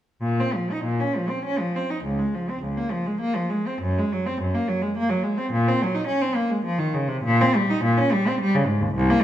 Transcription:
0.21 A#2
0.40 C4
0.54 F3
0.71 D#4
0.84 A#2
1.00 C#4
1.17 F3
1.29 C4
1.45 C#4
1.59 F3
1.76 C4
1.90 D#4
2.04 C#2
2.19 G#3
2.34 F3
2.49 C4
2.62 C#2
2.77 A#3
2.91 F3
3.06 G#3
3.20 A#3
3.35 F3
3.49 G#3
3.67 C4
3.81 F#2
3.98 G#3
4.12 F#3
4.26 C4
4.41 F#2
4.54 A#3
4.68 F#3
4.82 G#3
4.97 A#3
5.09 F#3
5.23 G#3
5.37 C4
5.52 A#2
5.68 C4
5.82 F#3
5.95 D#4
6.07 C#4
6.22 C4
6.35 A#3
6.50 G#3
6.65 F3
6.78 D#3
6.94 C#3
7.08 C3
7.24 A#2
7.41 C4
7.56 G3
7.70 D#4
7.84 A#2
7.97 C#4
8.12 G3
8.28 C4
8.40 G3
8.55 C#3
8.67 G#2
8.81 D#2
8.95 C2
9.10 A#3

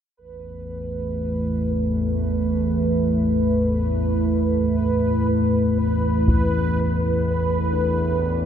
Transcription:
0.17 A1 E2 A3 B4
0.88 B4
1.97 E4
4.53 D2
6.28 taiko
6.75 B2
7.72 D4

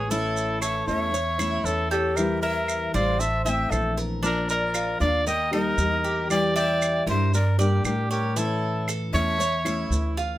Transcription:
Already playing: A1 B3 E4 G#4 B4
0.10 E3 A3 C#4 E4 A4 C#5, maracas
0.37 maracas
0.61 A4 C#5 E5, claves, maracas
0.87 E2 A3 C#4 E4 C#5 E5, maracas
1.13 C#5, muted nylon-string guitar stroke, maracas
1.38 A3 C#4 E4, claves, maracas
1.64 E2 E3 A3 C#4 E4 A4 C#5, maracas
1.90 G4 A4 D5, maracas
1.95 C#5
2.16 E3 G3 E4 A#4 E5, claves, maracas
2.42 A#4 E5
2.68 claves, maracas
2.94 A1 G3 E4 C5 D5 F5, maracas
3.19 E5 A5, muted nylon-string guitar stroke, maracas
3.45 A3 C4 E4 E5 A5, maracas
3.49 G5
3.70 A#1 E3 A3 C4 E4 A4 C5, claves, maracas
3.97 A#4, maracas
4.22 F3 A#3 D4 F4 A#4 D5, maracas
4.49 A#4 D#5, maracas
4.53 D5
4.74 F4, claves, maracas
5.00 D#2 A#3 D4 F4 D5 F5, maracas
5.26 A#4 D#5 G5, muted nylon-string guitar stroke, maracas
5.51 G3 A#3 D#4 G4 A#4 D#5, claves
5.78 E2 G3 A#3 D#4 G4, maracas
6.04 G4, maracas
6.29 E3 G3 E4 D5 G5, claves, maracas
6.55 D5 E5 G5, maracas
6.82 claves, maracas
7.06 G2 G3 E4 A#4 C5 E5, maracas
7.34 A#4 D5, muted nylon-string guitar stroke, maracas
7.58 G3 A#3 D4 G4 A#4 B4 D5, maracas
7.84 A2 G3 D4 G4 A#4 B4, claves, maracas
8.10 G4 A#4 C#5, maracas
8.36 E3 A3 C#4 E4 A4 C#5, maracas
8.88 A4, claves, maracas
9.13 E2 A3 C#4 E4 C#5 E5, maracas
9.39 C#5, muted nylon-string guitar stroke, maracas
9.65 A3 C#4 E4, claves, maracas
9.90 D2 E3 A3 C#4 E4, maracas
10.17 F4, maracas

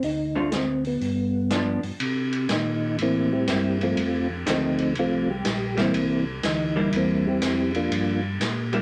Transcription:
0.03 D2 D#4, open hi-hat
0.35 D3 A3 C4 D4 F4
0.51 A3 C4, snare, closed hi-hat
0.85 B3, open hi-hat
1.01 G2, open hi-hat
1.50 F3 B3 D4, snare, closed hi-hat
1.83 G2, open hi-hat
2.00 C3, ride
2.32 ride
2.49 A#2 D#3 D#4, snare, hi-hat pedal, ride
2.98 A2 E3 A#3 C4 E4, ride
3.32 G3 C4 E4 G4
3.47 G2 G3 A#3 E4, snare, hi-hat pedal, ride
3.81 F3 A3 C4 F4, ride
3.97 F2, ride
4.46 D2 D#3 F3 A3 C4 D#4, snare, hi-hat pedal, ride
4.78 ride
4.95 C2 C4 F4, ride
5.00 F3 A3
5.30 G3 G4
5.45 A#1, snare, hi-hat pedal, ride
5.77 E3 G3 A#3 C4 E4, snare, ride
5.93 C2, ride
6.43 D2 E3 D#4, snare, hi-hat pedal, ride
6.76 G3 A#3 E4
6.92 E2 E3 E4, ride
6.97 A#3 C4
7.27 G3 C4 E4 G4
7.41 F2, snare, hi-hat pedal, ride
7.74 F3 A#3 D4 F4, ride
7.91 G2, ride
8.40 A#2, snare, hi-hat pedal, ride
8.73 G3 A#3 E4, ride

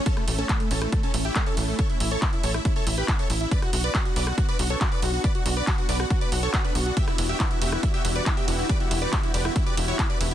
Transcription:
Already playing: A3 C#4
0.06 C#4 E4 A4, kick, closed hi-hat
0.17 A3, cross-stick, closed hi-hat
0.28 A1 A3, open hi-hat
0.38 C#4 A4, closed hi-hat
0.49 A3, kick, clap, closed hi-hat
0.60 A3, closed hi-hat
0.71 A1 C#4 A4, open hi-hat
0.82 A3, cross-stick, closed hi-hat
0.92 A3, kick, closed hi-hat
1.03 C#4 A4, closed hi-hat
1.14 A1 A3, open hi-hat
1.25 E4 G4, closed hi-hat
1.36 A3, kick, clap, closed hi-hat
1.46 C#4 A4, closed hi-hat
1.57 A1 A3, open hi-hat
1.68 A3
1.79 A4 C#5, kick, closed hi-hat
1.90 E4, closed hi-hat
2.00 A1 E4, open hi-hat
2.11 A4 C#5, closed hi-hat
2.22 E4, kick, clap, closed hi-hat
2.33 E4, closed hi-hat
2.44 A1 A4 C#5, open hi-hat
2.54 E4, cross-stick, closed hi-hat
2.65 E4, kick, closed hi-hat
2.76 A4 C#5, closed hi-hat
2.87 A1 E4, open hi-hat
2.98 G4 B4
3.08 E4, kick, clap, closed hi-hat
3.19 A4 C#5, closed hi-hat
3.30 A1 E4, open hi-hat
3.41 E4, closed hi-hat
3.51 B3 D4 F#4 B4 D5, kick, closed hi-hat
3.62 F#4, cross-stick, closed hi-hat
3.73 B1 F#4, open hi-hat
3.84 B4 D5, closed hi-hat
3.95 F#4, kick, clap, closed hi-hat
4.05 F#4, closed hi-hat
4.16 B1 B4 D5, open hi-hat
4.27 F#4, cross-stick, closed hi-hat
4.38 F#4, kick, closed hi-hat
4.49 B4 D5, closed hi-hat
4.59 B1 F#4, open hi-hat
4.70 A4 C#5, closed hi-hat
4.81 F#4, kick, clap, closed hi-hat
4.92 B4 D5, closed hi-hat
5.02 B1 F#4, open hi-hat
5.13 F#4
5.24 B4 D5, kick, closed hi-hat
5.35 F#4, closed hi-hat
5.46 B1 F#4, open hi-hat
5.56 B4 D5, closed hi-hat
5.67 F#4, kick, clap, closed hi-hat
5.78 F#4, closed hi-hat
5.89 B1 B4 D5, open hi-hat
6.00 F#4, cross-stick, closed hi-hat
6.10 F#4, kick, closed hi-hat
6.21 B4 D5, closed hi-hat
6.32 B1 F#4, open hi-hat
6.43 A4 C#5, closed hi-hat
6.54 F#4, kick, clap, closed hi-hat
6.64 D4 B4, closed hi-hat
6.75 B1 F#4, open hi-hat
6.86 F#4, closed hi-hat
6.97 E3 G4 E5, kick, closed hi-hat, ride
7.08 E4, cross-stick, closed hi-hat
7.18 E1 E4, open hi-hat, ride
7.29 G4 E5, closed hi-hat
7.40 E4, kick, clap, closed hi-hat, ride
7.51 E4, closed hi-hat
7.61 E1 G4 E5, open hi-hat, ride
7.72 E4, cross-stick, closed hi-hat
7.83 E4, kick, closed hi-hat, ride
7.94 G4 E5, closed hi-hat
8.05 E1 E4, open hi-hat, ride
8.15 B4 D5, closed hi-hat
8.26 E4, kick, clap, closed hi-hat, ride
8.37 G4 E5, closed hi-hat
8.48 E1 E4, open hi-hat, ride
8.59 E4
8.69 B4 D5, kick, closed hi-hat, ride
8.80 E4, closed hi-hat
8.91 E1 E4, open hi-hat, ride
9.02 B4 D5, closed hi-hat
9.12 E4, kick, clap, closed hi-hat, ride
9.23 E4, closed hi-hat
9.34 E1 B4 D5, open hi-hat, ride
9.45 E4, cross-stick, closed hi-hat
9.56 E4, kick, closed hi-hat, ride
9.66 B4 D5, closed hi-hat
9.77 E1 E4, open hi-hat, ride
9.88 E4 C#5, closed hi-hat
9.99 kick, clap, closed hi-hat, ride
10.10 B4 D5, closed hi-hat
10.20 E1 E4, open hi-hat, ride
10.31 E4

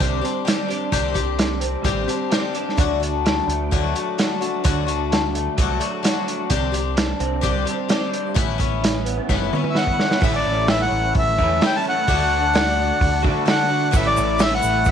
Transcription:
Already playing: C3 C4 D4
0.00 C2 G3 C4 D4 G4, kick, closed hi-hat
0.21 C4 D4 G4, closed hi-hat
0.45 G3 C4 D4 G4, snare, closed hi-hat
0.67 D4 G4, closed hi-hat
0.71 C4 D4
0.92 C2 C3 G3 C4 D4 G4, kick, closed hi-hat
1.14 C4 D4 G4, kick, closed hi-hat
1.38 D4, snare, closed hi-hat
1.60 C4, closed hi-hat
1.84 A1 C3 G3 C4 D4 G4, kick, closed hi-hat
2.06 C4 D4 G4, closed hi-hat
2.11 C4
2.30 G3 C4 G4, snare, closed hi-hat
2.34 D4 G4
2.53 D4 G4, closed hi-hat
2.57 C4
2.69 snare
2.77 D2 D3 F#3 A3 D4 F#4, kick, closed hi-hat
3.00 A3 D4 F#4, closed hi-hat
3.25 D4, snare, closed hi-hat
3.48 D2 A3, closed hi-hat
3.71 D2 D3 F#3 A3 D4 F#4, kick, closed hi-hat
3.95 A3 D4 F#4, closed hi-hat
4.18 F#3 A3 D4 F#4, snare, closed hi-hat
4.41 A3 D4 F#4, closed hi-hat
4.64 D2 D3 F#3 A3 D4 F#4, kick, closed hi-hat
4.87 A3 D4 F#4, closed hi-hat
5.11 D4, snare, closed hi-hat
5.35 A3, closed hi-hat
5.58 C2 D3 F#3 A3 D4 F#4, kick, closed hi-hat
5.80 A3 D4 F#4, closed hi-hat
6.03 F#3 A3 D4 F#4, snare, closed hi-hat
6.26 D4, closed hi-hat
6.50 C2 C3 G3 C4 D4 G4, kick, closed hi-hat
6.72 C4 D4 G4, closed hi-hat
6.96 D4, snare, closed hi-hat
7.19 C2 C4, closed hi-hat
7.41 C2 C3 G3 C4 D4 G4, kick, closed hi-hat
7.65 C4 D4 G4, closed hi-hat
7.69 C4
7.88 G3 C4 D4 G4, snare, closed hi-hat
8.11 D4, closed hi-hat
8.34 A1 A2 E3 B3 C#4 E4, kick, closed hi-hat
8.58 B3 C#4 E4, kick, closed hi-hat
8.81 C#4, snare, closed hi-hat
9.05 B3, closed hi-hat
9.29 F#1 A2 E3 B3 C#4 E4, kick, snare
9.41 high tom
9.52 B3 C#4 E4, mid tom
9.56 B3
9.64 mid tom
9.70 E5
9.74 E3 B3 E4 F#5, snare
9.79 C#4 E4
9.87 kick
9.93 A3 B3
9.97 C4 C#4, snare
10.02 D4 E4
10.07 F4
10.11 G4 A4, snare
10.16 B4 C5
10.20 A1 A2 C#3 E3 A3 C#4 E4 A4 D5 E5, kick, open hi-hat
10.25 E4
10.35 D5
10.46 A1
10.67 E3 A3 C#4 E5, snare, open hi-hat
10.73 E4
10.82 F#5
10.91 A1
11.14 A1, kick, open hi-hat
11.19 E5
11.39 E2 A2 E3 A3 C#4 E4, kick
11.60 A2 E3 A3 C#4, snare, open hi-hat
11.65 E4 G5
11.76 A5
11.85 A3 C#4 E4 F#5
12.07 D2 D3 A3 D4 F#4 A4, kick, open hi-hat
12.53 D3 A3 D4 F#4, snare, open hi-hat
13.01 D2, kick, open hi-hat
13.23 D3 A3 D4 F#4, kick
13.45 D3 A3 D4 F#4, snare, open hi-hat
13.50 F#5
13.68 A3 D4 F#4
13.91 A1 A2 C#3 E3 A3 C#4 E4 A4, kick, open hi-hat, shaker
13.96 E5
14.06 D5
14.17 A1, shaker
14.38 E3 A3 C#4 E4, snare, open hi-hat, shaker
14.43 E5
14.55 F#5
14.62 A1, shaker
14.85 A1 E5, kick, open hi-hat, shaker

